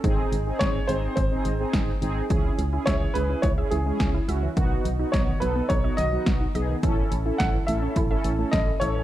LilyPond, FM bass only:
\new Staff \with { instrumentName = "FM bass" } { \clef bass \time 4/4 \key cis \minor \tempo 4 = 106 gis,,8 gis,,8 gis,,8 gis,,8 gis,,8 gis,,8 gis,,8 gis,,8 | cis,8 cis,8 cis,8 cis,8 cis,8 cis,8 cis,8 cis,8 | b,,8 b,,8 b,,8 b,,8 b,,8 b,,8 b,,8 b,,8 | a,,8 a,,8 a,,8 a,,8 a,,8 a,,8 a,,8 a,,8 | }